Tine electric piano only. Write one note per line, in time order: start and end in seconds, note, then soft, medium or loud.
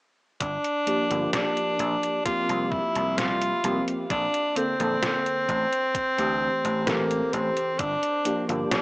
0.86 1.07 F3 medium
0.86 1.07 A#3 medium
0.86 1.07 D4 medium
0.86 1.07 G4 medium
1.09 2.19 F3 medium
1.09 2.20 A#3 medium
1.09 2.20 D4 medium
1.09 2.21 G4 medium
2.24 3.58 F3 medium
2.24 3.58 A#3 medium
2.24 3.59 C4 medium
2.24 3.59 G4 medium
3.64 4.04 F3 medium
3.64 4.04 A#3 medium
3.64 4.05 C4 medium
3.64 4.05 G4 medium
4.56 4.74 D3 medium
4.56 4.74 A#3 medium
4.56 4.74 C4 medium
4.56 4.75 A4 medium
4.79 5.46 D3 medium
4.79 5.46 A#3 medium
4.79 5.46 C4 medium
4.79 5.46 A4 medium
6.17 6.81 E3 medium
6.17 6.81 A3 medium
6.17 6.82 C4 medium
6.17 6.82 G4 medium
6.86 7.76 E3 medium
6.86 7.77 C4 medium
6.86 7.77 G4 loud
6.86 7.76 A4 medium
8.25 8.45 F3 medium
8.25 8.45 A#3 medium
8.25 8.46 D4 medium
8.25 8.46 G4 medium
8.48 8.82 F3 medium
8.48 8.82 A#3 medium
8.48 8.82 D4 medium
8.48 8.82 G4 medium